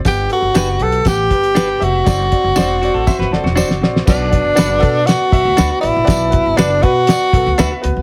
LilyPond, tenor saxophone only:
\new Staff \with { instrumentName = "Tenor saxophone" } { \time 4/4 \key b \phrygian \tempo 4 = 120 g'8 fis'4 a'8 g'4. fis'8~ | fis'2.~ fis'8 r8 | d'2 fis'4. e'8~ | e'4 d'8 fis'2 r8 | }